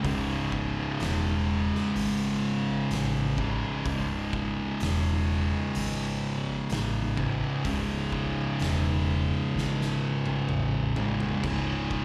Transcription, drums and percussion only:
0.05 kick, open hi-hat
0.52 kick
1.00 snare, open hi-hat
1.75 snare
1.96 open hi-hat
2.91 snare, open hi-hat
3.38 kick
3.85 kick, open hi-hat
4.33 kick
4.80 snare, open hi-hat
5.75 open hi-hat
6.70 snare, open hi-hat
7.17 kick
7.65 kick, open hi-hat
8.12 kick
8.60 snare, open hi-hat
9.58 snare
9.81 snare
10.26 high tom
10.49 mid tom
10.96 floor tom
11.20 floor tom
11.43 kick, crash
11.91 kick

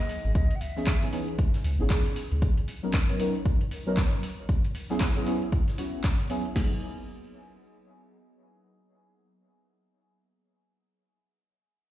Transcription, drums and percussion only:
0.09 open hi-hat, tambourine
0.35 kick, closed hi-hat, tambourine
0.51 closed hi-hat
0.61 open hi-hat, tambourine
0.77 snare
0.87 kick, snare, clap, closed hi-hat, tambourine
1.02 open hi-hat
1.13 open hi-hat, tambourine
1.28 closed hi-hat
1.39 kick, closed hi-hat, tambourine
1.54 snare, closed hi-hat
1.64 open hi-hat, tambourine
1.90 kick, snare, clap, closed hi-hat, tambourine
2.06 closed hi-hat
2.16 open hi-hat, tambourine
2.32 closed hi-hat
2.42 kick, closed hi-hat, tambourine
2.58 closed hi-hat
2.68 open hi-hat, tambourine
2.93 kick, snare, clap, closed hi-hat, tambourine
3.09 closed hi-hat
3.20 open hi-hat, tambourine
3.35 closed hi-hat
3.45 kick, closed hi-hat, tambourine
3.61 closed hi-hat
3.71 open hi-hat, tambourine
3.97 kick, snare, clap, closed hi-hat, tambourine
4.13 closed hi-hat
4.23 open hi-hat, tambourine
4.49 kick, closed hi-hat, tambourine
4.64 closed hi-hat
4.75 open hi-hat, tambourine
4.90 snare
5.00 kick, snare, clap, closed hi-hat, tambourine
5.16 open hi-hat
5.26 open hi-hat, tambourine
5.42 closed hi-hat
5.52 kick, closed hi-hat, tambourine
5.68 snare, closed hi-hat
5.78 open hi-hat, tambourine
6.04 kick, snare, clap, closed hi-hat, tambourine
6.20 closed hi-hat
6.30 open hi-hat, tambourine
6.45 closed hi-hat
6.56 kick, snare, crash

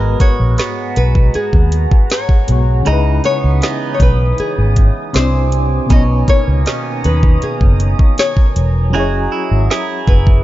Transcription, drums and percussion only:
0.20 kick, closed hi-hat
0.58 snare, closed hi-hat
0.96 closed hi-hat
1.15 kick
1.34 closed hi-hat
1.53 kick
1.72 closed hi-hat
1.91 kick
2.10 snare, closed hi-hat
2.29 kick
2.48 closed hi-hat
2.86 closed hi-hat
3.24 closed hi-hat
3.62 snare, closed hi-hat
4.00 kick, closed hi-hat
4.38 closed hi-hat
4.76 kick, closed hi-hat
5.14 snare, closed hi-hat
5.52 closed hi-hat
5.90 kick, closed hi-hat
6.28 kick, closed hi-hat
6.66 snare, closed hi-hat
7.04 closed hi-hat
7.23 kick
7.42 closed hi-hat
7.61 kick
7.80 closed hi-hat
7.99 kick
8.18 snare, closed hi-hat
8.37 kick
8.56 closed hi-hat
9.71 snare
10.08 kick
10.27 kick

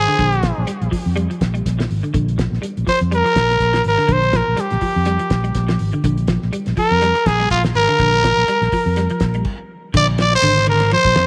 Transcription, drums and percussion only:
0.19 kick, closed hi-hat
0.32 closed hi-hat
0.43 kick, snare, closed hi-hat
0.67 closed hi-hat
0.82 closed hi-hat
0.92 kick, open hi-hat
1.17 closed hi-hat
1.31 closed hi-hat
1.41 kick, snare, closed hi-hat
1.55 closed hi-hat
1.66 kick, snare, closed hi-hat
1.80 snare, closed hi-hat
1.91 open hi-hat
2.04 closed hi-hat
2.14 kick, closed hi-hat
2.28 closed hi-hat
2.39 kick, snare, closed hi-hat
2.53 snare
2.63 closed hi-hat
2.77 closed hi-hat
2.87 kick, snare, open hi-hat
3.01 closed hi-hat
3.12 closed hi-hat
3.26 closed hi-hat
3.36 kick, snare, closed hi-hat
3.50 snare, closed hi-hat
3.60 kick, closed hi-hat
3.73 snare, closed hi-hat
3.84 open hi-hat
3.98 snare
4.09 kick, closed hi-hat
4.23 closed hi-hat
4.33 kick, snare, closed hi-hat
4.57 snare, closed hi-hat
4.71 snare, closed hi-hat
4.81 kick, open hi-hat
5.05 snare, closed hi-hat
5.19 closed hi-hat
5.30 kick, snare, closed hi-hat
5.44 closed hi-hat
5.55 kick, snare, closed hi-hat
5.68 snare, closed hi-hat
5.79 open hi-hat
5.92 closed hi-hat
6.04 kick, closed hi-hat
6.18 closed hi-hat
6.28 kick, snare, closed hi-hat
6.42 snare
6.53 closed hi-hat
6.66 snare, closed hi-hat
6.77 kick, open hi-hat
6.91 closed hi-hat
7.02 snare, closed hi-hat
7.15 closed hi-hat
7.26 kick, snare, closed hi-hat
7.40 snare, closed hi-hat
7.50 kick, closed hi-hat
7.64 snare, closed hi-hat
7.75 open hi-hat
7.99 kick, closed hi-hat
8.13 closed hi-hat
8.24 kick, snare, closed hi-hat
8.38 snare
8.48 closed hi-hat
8.62 snare, closed hi-hat
8.72 kick, open hi-hat
8.96 snare, closed hi-hat
9.10 closed hi-hat
9.20 kick, snare, closed hi-hat
9.34 closed hi-hat
9.45 kick, crash
9.94 kick, crash
10.18 snare, ride bell
10.32 snare
10.42 ride bell
10.57 snare
10.67 ride bell
10.80 snare, ride bell
10.91 ride bell
11.05 kick
11.15 snare, ride bell

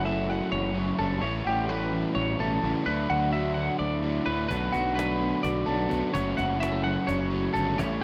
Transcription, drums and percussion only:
4.51 cajon bass
4.74 cajon bass
4.99 cajon slap
5.22 cajon slap
5.44 cajon bass
5.69 cajon slap
5.91 cajon bass
6.15 cajon bass
6.38 cajon bass, cajon slap
6.63 cajon slap
6.85 cajon slap
7.09 cajon bass, cajon slap
7.32 cajon slap
7.55 cajon bass, cajon slap
7.79 cajon bass

